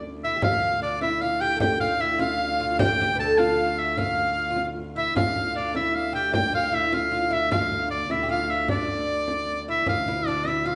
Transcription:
Already playing: D2
0.24 E4 E5
0.36 G4
0.42 D2 F4 F5, frame drum
0.82 D4 D5
1.01 E4 E5, frame drum
1.21 F4 F5
1.41 G4 G5, frame drum
1.56 A4, frame drum
1.61 G4 G5
1.80 F4 F5
2.00 E4 E5
2.19 F4 F5, frame drum
2.60 F4, frame drum
2.79 G4 G5, frame drum
3.00 G4 G5
3.15 B4 A5
3.20 A4 A5
3.38 F4 F5, frame drum
3.78 E5, frame drum
3.97 F4 F5, frame drum
4.18 frame drum
4.50 F4
4.57 frame drum
4.76 frame drum
4.96 E4 E5, frame drum
5.15 D2 F4 F5, frame drum
5.55 D4 D5
5.75 E4 E5, frame drum
5.95 F5
6.13 G4 G5, frame drum
6.33 G4 G5, frame drum
6.53 F4 F5
6.72 E4 E5
6.92 F4 F5, frame drum
7.11 F4
7.30 E4 E5, frame drum
7.51 F4 F5, frame drum
7.91 D5
8.10 E4 E5, frame drum
8.23 G4
8.29 F4 F5
8.49 E5, frame drum
8.68 D4 D5, frame drum
9.28 frame drum
9.47 frame drum
9.68 E4 E5
9.86 D2 F4 F5, frame drum
10.08 E4
10.26 D4 D5
10.45 E4 E5, frame drum
10.66 F4 F5

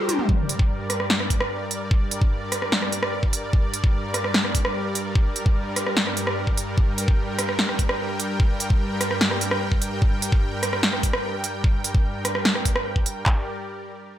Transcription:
Already playing: G3 G4 A#4 C5
0.09 closed hi-hat, mid tom
0.19 mid tom
0.29 G2 G3 A#4 D5, kick
0.49 closed hi-hat
0.59 kick
0.90 cross-stick, closed hi-hat
1.00 cross-stick
1.10 snare
1.20 cross-stick
1.30 kick, closed hi-hat
1.41 cross-stick
1.71 closed hi-hat
1.91 kick
2.11 closed hi-hat
2.22 kick
2.52 cross-stick, closed hi-hat
2.62 cross-stick
2.72 snare
2.82 cross-stick
2.92 closed hi-hat
3.03 cross-stick
3.23 kick
3.33 closed hi-hat
3.53 kick
3.74 closed hi-hat
3.84 kick
4.14 cross-stick, closed hi-hat
4.24 cross-stick
4.34 snare
4.45 cross-stick
4.55 kick, closed hi-hat
4.65 cross-stick
4.95 closed hi-hat
5.15 kick
5.36 closed hi-hat
5.46 kick
5.76 cross-stick, closed hi-hat
5.87 cross-stick
5.97 snare
6.07 cross-stick
6.17 closed hi-hat
6.27 cross-stick
6.47 kick
6.57 closed hi-hat
6.78 G5, kick
6.98 closed hi-hat
7.08 kick
7.39 cross-stick, closed hi-hat
7.49 cross-stick
7.59 snare
7.69 cross-stick
7.79 kick, closed hi-hat
7.89 cross-stick
8.20 closed hi-hat
8.40 kick
8.60 closed hi-hat
8.70 kick
9.01 cross-stick, closed hi-hat
9.11 cross-stick
9.21 snare
9.31 cross-stick
9.41 closed hi-hat
9.51 cross-stick
9.72 kick
9.82 closed hi-hat
10.02 kick
10.22 closed hi-hat
10.32 kick
10.63 cross-stick, closed hi-hat
10.73 cross-stick
10.83 snare
10.93 cross-stick
11.03 kick, closed hi-hat
11.13 cross-stick
11.44 closed hi-hat
11.64 kick
11.84 closed hi-hat
11.95 kick
12.25 cross-stick, closed hi-hat
12.35 cross-stick
12.45 snare
12.55 cross-stick
12.65 kick, closed hi-hat
12.76 cross-stick
12.96 kick
13.06 closed hi-hat
13.26 G3 G4 A#4 D5, kick, clap

